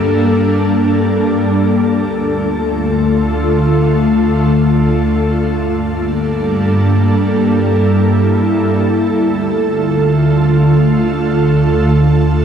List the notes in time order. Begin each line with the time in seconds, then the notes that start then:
Already playing: G2 G3 A#3 D4 A4
1.83 D2 D3 A3 F4 A4
5.39 G2 G3 A#3 D4 A4
7.17 E4
8.95 D2 D3 A3 F4